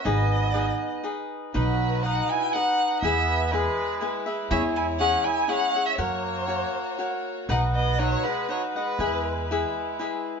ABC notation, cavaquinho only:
X:1
M:3/4
L:1/8
Q:1/4=121
K:B
V:1 name="Cavaquinho"
[DGBd]2 [DGBd]2 [DGBd]2 | [DBdf]2 [DBdf]2 [DBdf]2 | [EGBe]2 [EGBe]2 [EGBe] [GBe] | [EGce]2 [EGce]2 [EGce] [Gce] |
[FAcf]2 [FAcf]2 [FAcf]2 | [DBdf]2 [DBdf] [Bdf] [DBdf] [Bdf] | [EGBe]2 [EGBe]2 [EGBe]2 |]